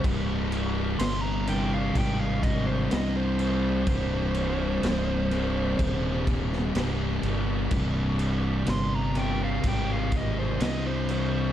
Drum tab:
CC |x-x-x-x-x-x-x-x-|x-x-x-x-x-x-x-x-|x-x-x-x-x-x-x-x-|
SD |----o-------o---|----o------oo---|----o-------o---|
BD |o-------o-o-----|o-------o-o-----|o-------o-o-----|